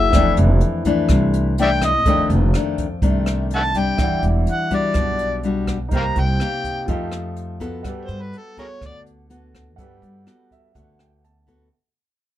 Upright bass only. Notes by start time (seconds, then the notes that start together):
Already playing: F#1
0.13 F1
0.38 F1
1.09 C2
2.06 F1
2.30 F1
3.02 C2
3.98 E1
4.23 E1
4.95 B1
5.92 C2
6.16 C2
6.88 F2
7.84 G2
8.08 G2
8.81 D2
9.78 G2
10.02 G2
10.75 D2